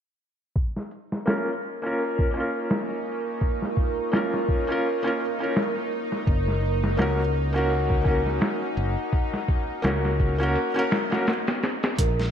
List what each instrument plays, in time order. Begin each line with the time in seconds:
0.55 synth drone D#4, ambient pad A#4 F5 C#6, kick, closed hi-hat
0.76 snare
0.91 closed hi-hat
1.12 snare
1.26 felt piano A#3 C#4 F4, snare, closed hi-hat
1.30 felt piano A#4
1.63 closed hi-hat
1.82 felt piano A#3 C#4 F4, closed hi-hat
1.87 felt piano A#4
1.99 open hi-hat
2.19 kick
2.31 felt piano A#3 C#4, closed hi-hat
2.37 felt piano F4 A#4
2.70 snare, closed hi-hat
3.06 closed hi-hat
3.26 closed hi-hat
3.41 kick, closed hi-hat
3.62 snare
3.77 kick, closed hi-hat
4.12 felt piano A#3 C#4 F4, snare, closed hi-hat
4.16 felt piano A#4
4.34 snare
4.49 kick, closed hi-hat
4.67 felt piano A#3 C#4 F4
4.72 felt piano A#4
4.84 closed hi-hat
5.03 felt piano A#3 C#4 F4
5.07 felt piano A#4
5.20 closed hi-hat
5.39 felt piano A#3 C#4 F4
5.43 felt piano A#4
5.56 snare, closed hi-hat
5.76 closed hi-hat
5.91 closed hi-hat
6.12 snare
6.27 fingered electric bass F#1, ambient pad F#5, kick, closed hi-hat
6.48 snare
6.63 closed hi-hat
6.84 snare
6.97 fingered electric bass C#2, felt piano A#3 C#4 F#4, snare, closed hi-hat
7.02 felt piano A#4
7.34 closed hi-hat
7.53 felt piano A#3 C#4 F#4, closed hi-hat
7.57 felt piano A#4
7.70 open hi-hat
7.90 kick
8.02 felt piano A#3 C#4, kick, closed hi-hat
8.07 felt piano F#4 A#4
8.26 snare
8.41 snare, closed hi-hat
8.77 fingered electric bass F#1, closed hi-hat
8.97 closed hi-hat
9.13 kick, closed hi-hat
9.34 snare
9.48 kick, closed hi-hat
9.82 fingered electric bass C#2, felt piano A#3 C#4 F#4, snare, closed hi-hat
9.87 felt piano A#4
10.05 snare
10.20 kick, closed hi-hat
10.38 felt piano A#3 C#4 F#4, closed hi-hat
10.43 felt piano A#4
10.55 closed hi-hat
10.74 felt piano A#3 C#4 F#4
10.79 felt piano A#4
10.91 snare, closed hi-hat
11.10 felt piano A#3 C#4 F#4, snare, closed hi-hat
11.14 felt piano A#4
11.27 snare, closed hi-hat
11.47 snare, closed hi-hat
11.63 snare, closed hi-hat
11.83 snare, closed hi-hat
11.98 fingered electric bass A#1, celesta A#4, synth drone C5, kick, closed hi-hat
12.20 snare